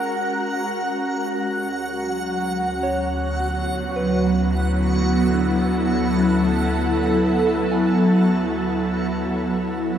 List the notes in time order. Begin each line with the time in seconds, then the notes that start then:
Already playing: G#3 C#4 F#4 G#4 A#4 F#5
1.39 D2
1.60 F#3
2.69 B3
2.83 C#5
3.28 E4
3.96 A4 B4
5.34 D4
6.19 C#4
7.71 G#5